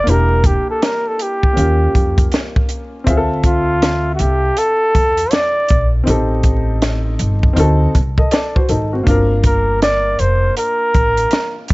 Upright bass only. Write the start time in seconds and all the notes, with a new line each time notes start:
0.07 E1
1.57 D#2
1.95 F2
3.07 D2
4.20 C2
4.95 E2
5.71 A#1
6.07 A1
7.20 G1
7.56 D2
7.95 C2
8.69 G#1
9.07 G1
10.20 F1
10.95 A1
11.70 F1